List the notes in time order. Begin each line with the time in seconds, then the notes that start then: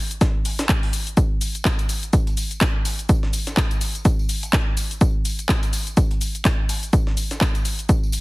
0.11 closed hi-hat, shaker
0.21 kick, snare, closed hi-hat, shaker
0.45 open hi-hat, shaker
0.59 snare, closed hi-hat, shaker
0.69 kick, clap, closed hi-hat, shaker
0.83 open hi-hat
0.93 open hi-hat, shaker
1.07 closed hi-hat, shaker
1.17 kick, closed hi-hat, tambourine, shaker
1.41 open hi-hat, tambourine, shaker
1.55 closed hi-hat, tambourine, shaker
1.65 kick, snare, clap, tambourine, shaker
1.79 closed hi-hat, tambourine
1.89 open hi-hat, tambourine, shaker
2.03 closed hi-hat, tambourine, shaker
2.13 kick, closed hi-hat, tambourine, shaker
2.27 closed hi-hat, tambourine
2.37 open hi-hat, tambourine, shaker
2.51 closed hi-hat, tambourine, shaker
2.61 kick, snare, clap, closed hi-hat, tambourine, shaker
2.85 open hi-hat, tambourine, shaker
2.99 closed hi-hat, tambourine, shaker
3.09 kick, closed hi-hat, tambourine, shaker
3.23 snare
3.33 open hi-hat, tambourine, shaker
3.47 snare, closed hi-hat, tambourine, shaker
3.57 kick, snare, clap, shaker
3.71 closed hi-hat, tambourine
3.81 open hi-hat, tambourine, shaker
3.95 closed hi-hat, tambourine, shaker
4.05 kick, closed hi-hat, tambourine, shaker
4.19 tambourine
4.29 open hi-hat, tambourine, shaker
4.43 closed hi-hat, tambourine, shaker
4.53 kick, snare, clap, closed hi-hat, shaker
4.77 open hi-hat, tambourine, shaker
4.91 closed hi-hat, tambourine, shaker
5.01 kick, closed hi-hat, tambourine, shaker
5.25 open hi-hat, tambourine, shaker
5.39 closed hi-hat, tambourine, shaker
5.49 kick, snare, clap, tambourine, shaker
5.63 closed hi-hat, tambourine
5.73 open hi-hat, tambourine, shaker
5.87 closed hi-hat, tambourine, shaker
5.97 kick, closed hi-hat, tambourine, shaker
6.11 closed hi-hat, tambourine
6.21 open hi-hat, tambourine, shaker
6.35 closed hi-hat, tambourine, shaker
6.45 kick, snare, clap, closed hi-hat, tambourine, shaker
6.69 open hi-hat, tambourine, shaker
6.83 closed hi-hat, tambourine, shaker
6.93 kick, closed hi-hat, tambourine, shaker
7.07 snare
7.17 open hi-hat, tambourine, shaker
7.31 snare, closed hi-hat, tambourine, shaker
7.41 kick, snare, clap, tambourine, shaker
7.55 closed hi-hat, tambourine
7.65 open hi-hat, tambourine, shaker
7.79 closed hi-hat, tambourine, shaker
7.89 kick, closed hi-hat, tambourine, shaker
8.03 tambourine
8.12 open hi-hat, tambourine, shaker